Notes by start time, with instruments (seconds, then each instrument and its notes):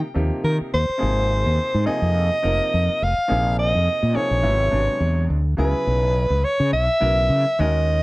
0.14 fretless electric bass D#2, grand piano C3 F3 A#3 D#4 G4
0.44 fretless electric bass D#3, soprano saxophone A#4
0.61 muted fretless electric bass stroke
0.74 fretless electric bass D#2, soprano saxophone C5
0.89 muted fretless electric bass stroke
0.98 grand piano C3 F3 A#3 D#4 G#4
1.02 fretless electric bass G#1
1.46 fretless electric bass D#2
1.74 fretless electric bass G#2
1.86 grand piano C3 F3 A#3 D#4 G#4, soprano saxophone D#5, muted fretless electric bass stroke
2.02 fretless electric bass F2
2.42 fretless electric bass F1, grand piano C3 F3 A#3 D#4 A#4
2.74 fretless electric bass F2
2.89 muted fretless electric bass stroke
3.02 fretless electric bass F1, soprano saxophone F5
3.28 fretless electric bass A#1, grand piano C3 F3 A#3 D#4 G#4
3.59 soprano saxophone D#5
3.75 fretless electric bass F2
4.03 fretless electric bass A#2
4.13 grand piano C3 F3 A#3 D#4 G#4, soprano saxophone C#5, muted fretless electric bass stroke
4.31 fretless electric bass A#1
4.42 fretless electric bass G#1, grand piano C3 F#3 G#3 B3 E4
4.70 fretless electric bass G#1, grand piano C3 F#3 G#3 B3 D4
5.00 fretless electric bass E2
5.30 fretless electric bass D2
5.57 fretless electric bass C#2, grand piano C#3 F#3 B3 E4 G#4, soprano saxophone B4
5.87 fretless electric bass B1
6.30 fretless electric bass C#2
6.44 soprano saxophone C#5
6.60 fretless electric bass C#3
6.72 fretless electric bass B1, soprano saxophone E5
7.00 fretless electric bass B1, grand piano C#3 F#3 B3 E4 A#4
7.29 fretless electric bass C#3
7.59 fretless electric bass D#2, grand piano D#3 G#3 C#4 F#4 A#4, soprano saxophone D#5